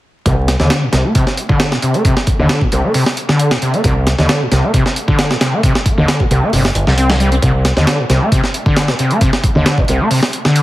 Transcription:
0.26 C2 C3, kick, closed hi-hat
0.48 snare, closed hi-hat
0.60 D#2 D3, snare
0.70 snare, closed hi-hat
0.82 A#2
0.92 C2 C3, snare, closed hi-hat
1.04 A#3
1.15 C3, kick, closed hi-hat
1.27 snare
1.37 closed hi-hat
1.49 D3, kick
1.60 snare, closed hi-hat
1.72 A#2, snare
1.82 C3, closed hi-hat
1.94 A#3, closed hi-hat
2.05 C3, kick, closed hi-hat
2.17 snare
2.27 kick, closed hi-hat
2.39 D#2 D3
2.49 snare, closed hi-hat
2.61 A#2, kick
2.72 C2 C3, closed hi-hat
2.84 A#3
2.94 C3, open hi-hat
3.06 snare
3.17 closed hi-hat
3.29 D3, snare
3.39 closed hi-hat
3.51 A#2, snare
3.62 C3, closed hi-hat
3.73 A#3, closed hi-hat
3.84 C2 C3, kick, closed hi-hat
4.07 snare, closed hi-hat
4.18 D#2 D3, snare
4.29 snare, closed hi-hat
4.41 A#2
4.52 C2 C3, snare, closed hi-hat
4.63 A#3
4.74 C3, kick, closed hi-hat
4.86 snare
4.96 closed hi-hat
5.08 D3, kick
5.19 snare, closed hi-hat
5.30 A#2, snare
5.41 C3, snare, closed hi-hat
5.53 A#3
5.63 C3, kick, closed hi-hat
5.75 snare
5.86 kick, closed hi-hat
5.98 D#2 D3
6.08 snare, closed hi-hat
6.20 A#2, kick
6.31 C2 C3, closed hi-hat
6.43 A#3
6.53 G1 C3, open hi-hat
6.65 snare
6.75 G1, closed hi-hat
6.87 C2 C3, snare
6.98 C4, closed hi-hat
7.10 C3, snare
7.20 G3, closed hi-hat
7.32 C4, closed hi-hat
7.42 C2 C3, kick, closed hi-hat
7.65 snare, closed hi-hat
7.77 D#2 D3, snare
7.87 snare, closed hi-hat
7.99 A#2
8.10 C2 C3, snare, closed hi-hat
8.21 A#3
8.32 C3, kick, closed hi-hat
8.44 snare
8.54 closed hi-hat
8.66 D3, kick
8.76 snare, closed hi-hat
8.88 A#2, snare
8.99 C3, closed hi-hat
9.11 A#3, closed hi-hat
9.21 C3, kick, closed hi-hat
9.33 snare
9.44 kick, closed hi-hat
9.55 D#2 D3
9.66 snare, closed hi-hat
9.78 A#2, kick
9.88 C2 C3, closed hi-hat
10.01 A#3
10.11 C3, open hi-hat
10.23 snare
10.33 closed hi-hat
10.45 D3, snare
10.56 closed hi-hat

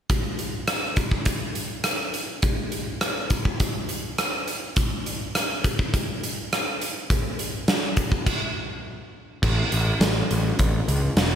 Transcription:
0.10 kick, closed hi-hat
0.39 closed hi-hat
0.67 cross-stick, closed hi-hat
0.96 kick, closed hi-hat
1.11 kick
1.25 kick, closed hi-hat
1.55 closed hi-hat
1.84 cross-stick, closed hi-hat
2.14 closed hi-hat
2.42 kick, closed hi-hat
2.72 closed hi-hat
3.01 cross-stick, closed hi-hat
3.30 kick, closed hi-hat
3.45 kick
3.60 kick, closed hi-hat
3.89 closed hi-hat
4.18 cross-stick, closed hi-hat
4.48 closed hi-hat
4.76 kick, closed hi-hat
5.06 closed hi-hat
5.35 cross-stick, closed hi-hat
5.64 kick, closed hi-hat
5.79 kick
5.94 kick, closed hi-hat
6.24 closed hi-hat
6.53 cross-stick, closed hi-hat
6.81 closed hi-hat
7.10 kick, closed hi-hat
7.39 closed hi-hat
7.68 snare, closed hi-hat
7.97 kick, closed hi-hat
8.12 kick
8.26 kick, crash
9.43 A1, kick, crash
9.72 A1, closed hi-hat
10.00 A1, snare, closed hi-hat
10.31 A1, closed hi-hat
10.59 A1, kick, closed hi-hat
10.88 C#2, closed hi-hat
11.16 E1, snare, closed hi-hat

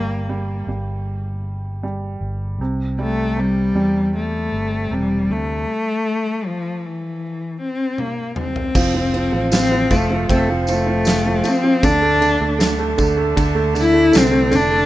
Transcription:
Already playing: G1 G3 A#3
0.29 G3
0.67 G1 G3
1.83 G3
2.21 G1
2.58 C2 C3
2.99 G3 A3
3.37 C3 G3
3.75 E2 G3
4.15 A3
4.52 G1
4.91 E1 C3 G3
5.29 D2 A3
6.46 F3
6.85 E3
7.60 C4
7.98 A#3, high tom
8.36 C4, mid tom
8.56 floor tom
8.75 F1 F3 A4 C5 F5, kick, crash, tambourine
8.94 F3
9.14 F3, ride
9.33 A1 F3
9.52 F3 C4, snare, ride, tambourine
9.72 F3
9.90 F1 F3 A3, kick, ride, tambourine
10.10 F3
10.29 F1 A3 C4, kick, ride, tambourine
10.49 F3
10.67 F3 A3, ride, tambourine
10.87 F3
11.05 F3, snare, ride, tambourine
11.26 F3
11.44 F3 C4, ride, tambourine
11.64 F3
11.83 D2 D3 D4 D5 E5 A5, kick, ride, tambourine
12.02 A3
12.21 D3, ride, tambourine
12.40 D2 A3
12.59 D3, snare, ride, tambourine
12.79 A3
12.98 D2 D3, kick, ride, tambourine
13.17 A3
13.36 D2 D3, kick, ride, tambourine
13.55 A3
13.74 D3, ride, tambourine
13.80 E4
13.94 A3
14.13 C2 D3, snare, ride, tambourine
14.18 C4
14.31 A3
14.51 F1 D3, ride, tambourine
14.55 D4
14.71 A3

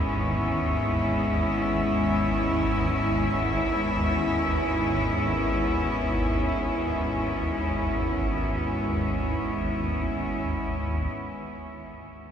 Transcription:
Already playing: G#1 D#2 G#2 G#3 B3 C#4 E4
11.12 G#1 D#2

